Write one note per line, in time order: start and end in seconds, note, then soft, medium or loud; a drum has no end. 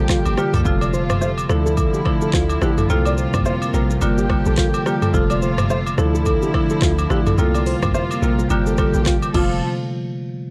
0.00 0.65 F3 medium
0.00 0.63 A#3 medium
0.00 0.65 G4 medium
0.09 0.18 F4 medium
0.09 kick loud
0.09 cross-stick loud
0.09 clap medium
0.09 shaker medium
0.25 0.36 G1 medium
0.25 high agogo medium
0.25 shaker medium
0.38 0.64 D3 medium
0.38 0.64 G3 medium
0.38 0.64 A#3 medium
0.38 0.64 F4 medium
0.38 0.54 G4 medium
0.38 cross-stick loud
0.38 shaker medium
0.54 0.64 C2 loud
0.54 0.60 A4 medium
0.54 mid tom loud
0.54 high agogo medium
0.54 shaker medium
0.65 1.46 F1 loud
0.65 1.44 C3 medium
0.65 1.49 C3 medium
0.65 1.44 F3 medium
0.65 1.49 A3 medium
0.65 1.44 A3 medium
0.65 1.49 F4 medium
0.65 1.44 F4 loud
0.65 kick loud
0.65 shaker medium
0.81 0.88 D5 medium
0.81 high agogo medium
0.81 shaker medium
0.93 1.02 C5 medium
0.93 shaker medium
1.10 cross-stick loud
1.10 mid tom medium
1.10 high agogo medium
1.10 shaker medium
1.21 1.30 C5 medium
1.21 low woodblock medium
1.21 shaker medium
1.38 high agogo medium
1.38 shaker soft
1.49 1.87 D2 loud
1.49 1.76 D3 medium
1.49 2.88 D3 medium
1.49 2.88 F3 medium
1.49 1.76 F3 medium
1.49 1.76 A3 medium
1.49 2.88 E4 medium
1.49 1.76 E4 medium
1.49 1.58 A4 medium
1.49 cross-stick loud
1.49 shaker medium
1.66 1.72 A4 medium
1.66 shaker medium
1.77 kick loud
1.77 high agogo medium
1.77 shaker medium
1.94 2.00 G4 medium
1.94 shaker medium
2.05 2.22 D3 medium
2.05 2.22 F3 medium
2.05 2.22 A3 medium
2.05 2.22 E4 medium
2.05 kick medium
2.05 cross-stick medium
2.05 high agogo medium
2.21 2.28 A4 medium
2.21 shaker medium
2.33 2.57 D2 medium
2.33 2.42 F4 medium
2.33 kick loud
2.33 cross-stick loud
2.33 clap medium
2.33 shaker medium
2.50 high agogo medium
2.50 shaker medium
2.61 2.85 A1 loud
2.61 2.78 D3 medium
2.61 2.78 F3 medium
2.61 2.78 A3 medium
2.61 2.78 E4 medium
2.61 2.70 G4 medium
2.61 cross-stick loud
2.61 shaker soft
2.78 2.84 A4 medium
2.78 mid tom loud
2.78 high agogo medium
2.78 shaker medium
2.90 3.27 C2 loud
2.90 3.68 C3 medium
2.90 4.01 C3 medium
2.90 3.68 G3 medium
2.90 5.12 A#3 medium
2.90 3.68 A#3 medium
2.90 4.01 F4 medium
2.90 3.69 F4 loud
2.90 shaker medium
3.05 3.12 D5 medium
3.05 high agogo medium
3.05 shaker soft
3.18 3.26 C5 medium
3.18 shaker medium
3.34 3.44 C2 medium
3.34 kick medium
3.34 cross-stick loud
3.34 mid tom medium
3.34 high agogo medium
3.34 shaker medium
3.45 3.54 C5 medium
3.45 low woodblock medium
3.45 shaker medium
3.62 high agogo medium
3.62 shaker soft
3.73 3.98 A#1 medium
3.73 4.00 C3 medium
3.73 4.00 G3 medium
3.73 4.00 A#3 medium
3.73 4.00 F4 medium
3.73 3.82 A#4 medium
3.73 shaker medium
3.90 3.96 A#4 medium
3.90 shaker medium
4.01 4.39 G1 loud
4.01 4.28 D3 loud
4.01 5.13 F3 medium
4.01 4.28 G3 medium
4.01 4.28 A#3 medium
4.01 4.28 F4 loud
4.01 5.13 G4 medium
4.01 high agogo medium
4.01 shaker medium
4.18 4.24 G4 medium
4.18 shaker medium
4.29 4.46 D3 medium
4.29 4.46 G3 medium
4.29 4.46 A#3 medium
4.29 4.47 F4 medium
4.29 kick medium
4.29 cross-stick medium
4.29 high agogo medium
4.45 4.70 A#1 loud
4.45 4.52 A4 medium
4.45 shaker medium
4.57 4.66 F4 medium
4.57 kick loud
4.57 cross-stick medium
4.57 clap loud
4.57 shaker medium
4.74 high agogo medium
4.74 shaker medium
4.86 5.12 D3 medium
4.86 5.12 G3 medium
4.86 5.12 A#3 medium
4.86 5.12 F4 medium
4.86 4.94 G4 medium
4.86 cross-stick medium
4.86 shaker soft
5.02 5.08 A4 medium
5.02 mid tom loud
5.02 high agogo medium
5.02 shaker medium
5.14 5.94 F1 loud
5.14 5.92 C3 medium
5.14 5.97 C3 medium
5.14 5.93 F3 medium
5.14 5.97 A3 medium
5.14 5.93 A3 medium
5.14 5.97 F4 medium
5.14 5.93 F4 loud
5.14 kick loud
5.14 shaker medium
5.30 5.36 D5 medium
5.30 high agogo medium
5.30 shaker medium
5.42 5.51 C5 medium
5.42 shaker medium
5.58 cross-stick loud
5.58 mid tom medium
5.58 high agogo medium
5.58 shaker medium
5.70 5.79 C5 medium
5.70 low woodblock medium
5.70 shaker medium
5.86 high agogo loud
5.86 shaker soft
5.98 6.36 D2 loud
5.98 6.24 D3 medium
5.98 7.37 D3 medium
5.98 7.37 F3 medium
5.98 6.24 F3 medium
5.98 6.24 A3 medium
5.98 7.37 E4 medium
5.98 6.25 E4 medium
5.98 6.07 A4 medium
5.98 cross-stick medium
5.98 shaker medium
6.15 6.21 A4 medium
6.15 shaker medium
6.26 kick loud
6.26 high agogo medium
6.26 shaker medium
6.42 6.49 G4 medium
6.42 shaker medium
6.54 6.71 D3 medium
6.54 6.71 F3 medium
6.54 6.71 A3 medium
6.54 6.71 E4 medium
6.54 kick medium
6.54 cross-stick medium
6.54 high agogo medium
6.70 6.77 A4 medium
6.70 shaker medium
6.82 7.06 D2 medium
6.82 6.91 F4 medium
6.82 kick loud
6.82 cross-stick loud
6.82 clap medium
6.82 shaker medium
6.98 high agogo medium
6.98 shaker medium
7.10 7.34 A1 medium
7.10 7.27 D3 medium
7.10 7.27 F3 medium
7.10 7.27 A3 medium
7.10 7.27 E4 medium
7.10 7.19 G4 medium
7.10 cross-stick medium
7.10 shaker soft
7.26 7.33 A4 medium
7.26 mid tom loud
7.26 high agogo medium
7.26 shaker medium
7.38 7.76 C2 loud
7.38 8.49 C3 medium
7.38 8.17 C3 medium
7.38 8.17 G3 medium
7.38 8.49 A#3 medium
7.38 8.17 A#3 medium
7.38 8.49 F4 medium
7.38 8.17 F4 loud
7.38 shaker medium
7.55 7.61 D5 medium
7.55 high agogo medium
7.55 shaker medium
7.66 7.75 C5 medium
7.66 open hi-hat medium
7.66 shaker medium
7.83 7.93 C2 medium
7.83 kick medium
7.83 cross-stick loud
7.83 mid tom medium
7.83 high agogo medium
7.83 shaker medium
7.94 8.03 C5 medium
7.94 low woodblock medium
7.94 shaker medium
8.11 high agogo medium
8.11 shaker soft
8.22 8.46 A#1 medium
8.22 8.49 C3 medium
8.22 8.49 G3 medium
8.22 8.49 A#3 medium
8.22 8.49 F4 medium
8.22 8.31 A#4 medium
8.22 shaker medium
8.39 8.45 A#4 medium
8.39 shaker medium
8.50 8.88 G1 loud
8.50 8.77 D3 medium
8.50 9.34 F3 medium
8.50 8.77 G3 medium
8.50 9.34 A#3 medium
8.50 8.77 A#3 medium
8.50 8.77 F4 loud
8.50 9.34 G4 medium
8.50 high agogo medium
8.50 shaker medium
8.66 8.73 A4 medium
8.66 shaker medium
8.78 8.95 D3 medium
8.78 8.95 G3 medium
8.78 8.95 A#3 medium
8.78 8.95 F4 medium
8.78 kick medium
8.78 cross-stick medium
8.78 high agogo medium
8.78 shaker medium
8.94 9.18 A#1 loud
8.94 9.01 G4 medium
8.94 shaker medium
9.06 9.15 F4 medium
9.06 kick loud
9.06 cross-stick medium
9.06 clap loud
9.06 shaker medium
9.22 high agogo medium
9.22 shaker medium
9.34 9.61 F1 loud
9.34 9.56 C3 medium
9.34 9.56 F3 medium
9.34 9.61 F3 medium
9.34 9.57 A3 medium
9.34 9.61 C4 medium
9.34 9.61 F4 medium
9.34 9.57 F4 loud
9.34 9.61 A4 medium
9.34 kick loud
9.34 crash medium
9.34 high agogo medium